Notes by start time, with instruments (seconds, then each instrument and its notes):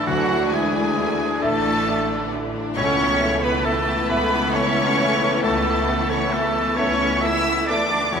Already playing: viola section D3 E3, harp E3 D4 E4 D5 E5 E6, french horn section E3 D4, violin section E4
0.05 grand piano D2, double bass section D2, harp D3, cello section F#3, violin section A3 F#5, oboe F#4, clarinet F#4
0.29 harp D4, violin section D4
0.51 cello section G#3, violin section A3 G#5, grand piano D4 E4 E5, clarinet G#4, oboe G#4
0.73 violin section D4, harp E4
0.96 violin section A3, grand piano D4 E4 E5, harp E5
1.19 violin section D4, harp D5
1.41 double bass section A1, violin section A3 A5, cello section A3, grand piano D4 E4 E5, oboe A4, clarinet A4, harp E5
1.64 violin section D4, harp E6
1.86 violin section A3, grand piano D4 E4 E5, harp E5
2.09 violin section D4, harp E4
2.32 violin section A3, harp D4, grand piano D4 E4 E5
2.55 harp A3, violin section D4
2.74 double bass section C#2, grand piano C#2, harp B2, viola section E3 A3, french horn section A3 B3, cello section C#4, oboe C#5, clarinet C#5, violin section C#6
2.78 violin section A3 E4
2.99 harp A3, violin section B3
3.20 violin section A3, harp B3, grand piano B3 A4 E5
3.43 cello section B3, violin section B3 B5, harp A4, oboe B4, clarinet B4
3.65 cello section A3, violin section A3 A5, grand piano B3 A4 E5, oboe A4, clarinet A4, harp E5
3.87 violin section B3, harp B4
4.08 double bass section C#2, violin section A3 B5, grand piano B3 A4 E5, cello section B3, clarinet B4, oboe B4, harp A5
4.31 violin section B3, harp E6
4.53 violin section A3 C#6, grand piano B3 A4 E5, cello section C#4, oboe C#5, clarinet C#5, harp A5
4.76 violin section B3, harp E5
4.99 violin section A3, grand piano B3 A4 E5, harp A4
5.21 harp A3, violin section B3
5.42 grand piano C#2, double bass section C#2, violin section A3 A5, cello section A3, oboe A4, clarinet A4
5.66 harp B3, violin section B3
5.88 harp A3, violin section A3, grand piano B3 A4 E5
6.10 violin section B3 C#6, cello section C#4, harp A4, oboe C#5, clarinet C#5
6.33 cello section A3, grand piano B3 A4 E5, oboe A4, clarinet A4, harp E5, violin section A5
6.37 violin section A3
6.55 violin section B3, harp B4
6.76 double bass section C#2, violin section A3 C#6, grand piano B3 A4 E5, cello section C#4, oboe C#5, clarinet C#5, harp A5
7.00 violin section B3, harp E6
7.21 violin section A3 E6, grand piano B3 A4 E5, cello section E4, clarinet E5, oboe E5, harp A5
7.44 violin section B3, harp E5
7.66 violin section A3 D6, grand piano B3 A4 E5, cello section D4, harp A4, oboe D5, clarinet D5
7.92 harp A3, violin section B3
8.12 grand piano E2, double bass section E2, viola section E3 F#3, harp E3, french horn section F#3 B3, violin section G#3 E4 C#6, cello section C#4, oboe C#5, clarinet C#5